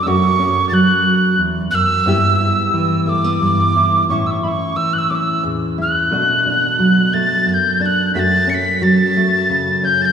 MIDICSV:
0, 0, Header, 1, 3, 480
1, 0, Start_track
1, 0, Tempo, 675676
1, 31, Time_signature, 6, 3, 24, 8
1, 7190, End_track
2, 0, Start_track
2, 0, Title_t, "Tin whistle"
2, 0, Program_c, 0, 75
2, 22, Note_on_c, 0, 88, 83
2, 52, Note_on_c, 0, 85, 90
2, 59, Note_off_c, 0, 88, 0
2, 486, Note_off_c, 0, 85, 0
2, 491, Note_on_c, 0, 93, 90
2, 522, Note_on_c, 0, 90, 97
2, 529, Note_off_c, 0, 93, 0
2, 1000, Note_off_c, 0, 90, 0
2, 1214, Note_on_c, 0, 90, 103
2, 1242, Note_on_c, 0, 88, 112
2, 1249, Note_off_c, 0, 90, 0
2, 2172, Note_off_c, 0, 88, 0
2, 2172, Note_on_c, 0, 88, 88
2, 2197, Note_on_c, 0, 86, 96
2, 2204, Note_off_c, 0, 88, 0
2, 2899, Note_off_c, 0, 86, 0
2, 2909, Note_on_c, 0, 85, 93
2, 3030, Note_on_c, 0, 88, 86
2, 3037, Note_off_c, 0, 85, 0
2, 3062, Note_on_c, 0, 85, 93
2, 3069, Note_off_c, 0, 88, 0
2, 3151, Note_on_c, 0, 83, 86
2, 3158, Note_off_c, 0, 85, 0
2, 3183, Note_on_c, 0, 85, 93
2, 3190, Note_off_c, 0, 83, 0
2, 3384, Note_on_c, 0, 88, 90
2, 3395, Note_off_c, 0, 85, 0
2, 3505, Note_on_c, 0, 90, 83
2, 3512, Note_off_c, 0, 88, 0
2, 3540, Note_on_c, 0, 88, 90
2, 3547, Note_off_c, 0, 90, 0
2, 3625, Note_on_c, 0, 86, 83
2, 3632, Note_off_c, 0, 88, 0
2, 3660, Note_on_c, 0, 88, 90
2, 3668, Note_off_c, 0, 86, 0
2, 3865, Note_off_c, 0, 88, 0
2, 4133, Note_on_c, 0, 90, 87
2, 5069, Note_on_c, 0, 93, 105
2, 5080, Note_off_c, 0, 90, 0
2, 5322, Note_off_c, 0, 93, 0
2, 5322, Note_on_c, 0, 93, 81
2, 5356, Note_on_c, 0, 91, 88
2, 5364, Note_off_c, 0, 93, 0
2, 5552, Note_on_c, 0, 93, 86
2, 5563, Note_off_c, 0, 91, 0
2, 5581, Note_on_c, 0, 90, 93
2, 5588, Note_off_c, 0, 93, 0
2, 5784, Note_off_c, 0, 90, 0
2, 5788, Note_on_c, 0, 95, 98
2, 5820, Note_on_c, 0, 93, 106
2, 5827, Note_off_c, 0, 95, 0
2, 6035, Note_on_c, 0, 97, 90
2, 6046, Note_off_c, 0, 93, 0
2, 6069, Note_on_c, 0, 95, 98
2, 6076, Note_off_c, 0, 97, 0
2, 6273, Note_on_c, 0, 93, 117
2, 6284, Note_off_c, 0, 95, 0
2, 6995, Note_on_c, 0, 91, 116
2, 7006, Note_off_c, 0, 93, 0
2, 7116, Note_on_c, 0, 93, 107
2, 7123, Note_off_c, 0, 91, 0
2, 7142, Note_on_c, 0, 91, 116
2, 7149, Note_off_c, 0, 93, 0
2, 7190, Note_off_c, 0, 91, 0
2, 7190, End_track
3, 0, Start_track
3, 0, Title_t, "Nylon-string guitar"
3, 0, Program_c, 1, 24
3, 40, Note_on_c, 1, 42, 74
3, 43, Note_on_c, 1, 57, 61
3, 47, Note_on_c, 1, 61, 63
3, 53, Note_on_c, 1, 66, 62
3, 270, Note_off_c, 1, 61, 0
3, 278, Note_on_c, 1, 61, 60
3, 511, Note_on_c, 1, 54, 66
3, 977, Note_off_c, 1, 42, 0
3, 980, Note_on_c, 1, 40, 51
3, 1218, Note_off_c, 1, 40, 0
3, 1221, Note_on_c, 1, 42, 63
3, 1440, Note_off_c, 1, 54, 0
3, 1451, Note_off_c, 1, 66, 0
3, 1459, Note_off_c, 1, 42, 0
3, 1462, Note_on_c, 1, 43, 81
3, 1466, Note_off_c, 1, 57, 0
3, 1468, Note_off_c, 1, 61, 0
3, 1468, Note_on_c, 1, 59, 63
3, 1471, Note_on_c, 1, 64, 64
3, 1476, Note_on_c, 1, 67, 69
3, 1703, Note_off_c, 1, 64, 0
3, 1706, Note_on_c, 1, 64, 57
3, 1942, Note_on_c, 1, 52, 64
3, 2177, Note_off_c, 1, 59, 0
3, 2180, Note_on_c, 1, 57, 58
3, 2304, Note_off_c, 1, 57, 0
3, 2304, Note_on_c, 1, 59, 45
3, 2415, Note_off_c, 1, 43, 0
3, 2423, Note_on_c, 1, 43, 57
3, 2663, Note_off_c, 1, 64, 0
3, 2671, Note_on_c, 1, 64, 56
3, 2876, Note_off_c, 1, 43, 0
3, 2880, Note_off_c, 1, 64, 0
3, 2881, Note_off_c, 1, 67, 0
3, 2905, Note_off_c, 1, 59, 0
3, 2908, Note_on_c, 1, 45, 70
3, 2914, Note_on_c, 1, 61, 59
3, 2921, Note_on_c, 1, 64, 68
3, 3148, Note_off_c, 1, 64, 0
3, 3156, Note_on_c, 1, 64, 62
3, 3374, Note_off_c, 1, 52, 0
3, 3383, Note_on_c, 1, 52, 56
3, 3620, Note_off_c, 1, 61, 0
3, 3629, Note_on_c, 1, 61, 61
3, 3858, Note_on_c, 1, 40, 56
3, 3867, Note_off_c, 1, 45, 0
3, 4097, Note_off_c, 1, 64, 0
3, 4106, Note_on_c, 1, 64, 63
3, 4317, Note_off_c, 1, 64, 0
3, 4318, Note_off_c, 1, 61, 0
3, 4339, Note_on_c, 1, 47, 70
3, 4342, Note_off_c, 1, 40, 0
3, 4344, Note_off_c, 1, 52, 0
3, 4344, Note_on_c, 1, 57, 61
3, 4350, Note_on_c, 1, 62, 57
3, 4356, Note_on_c, 1, 66, 60
3, 4581, Note_off_c, 1, 62, 0
3, 4590, Note_on_c, 1, 62, 51
3, 4823, Note_on_c, 1, 54, 62
3, 5067, Note_off_c, 1, 57, 0
3, 5070, Note_on_c, 1, 57, 64
3, 5300, Note_on_c, 1, 42, 57
3, 5302, Note_off_c, 1, 47, 0
3, 5533, Note_off_c, 1, 62, 0
3, 5542, Note_on_c, 1, 62, 60
3, 5754, Note_off_c, 1, 42, 0
3, 5755, Note_off_c, 1, 62, 0
3, 5756, Note_off_c, 1, 54, 0
3, 5762, Note_off_c, 1, 66, 0
3, 5782, Note_off_c, 1, 57, 0
3, 5783, Note_on_c, 1, 42, 78
3, 5790, Note_on_c, 1, 57, 69
3, 5792, Note_on_c, 1, 61, 66
3, 5797, Note_on_c, 1, 66, 65
3, 6010, Note_off_c, 1, 61, 0
3, 6019, Note_on_c, 1, 61, 57
3, 6262, Note_on_c, 1, 54, 66
3, 6505, Note_off_c, 1, 57, 0
3, 6514, Note_on_c, 1, 57, 65
3, 6746, Note_on_c, 1, 49, 61
3, 6975, Note_off_c, 1, 61, 0
3, 6984, Note_on_c, 1, 61, 60
3, 7190, Note_off_c, 1, 42, 0
3, 7190, Note_off_c, 1, 49, 0
3, 7190, Note_off_c, 1, 54, 0
3, 7190, Note_off_c, 1, 57, 0
3, 7190, Note_off_c, 1, 61, 0
3, 7190, Note_off_c, 1, 66, 0
3, 7190, End_track
0, 0, End_of_file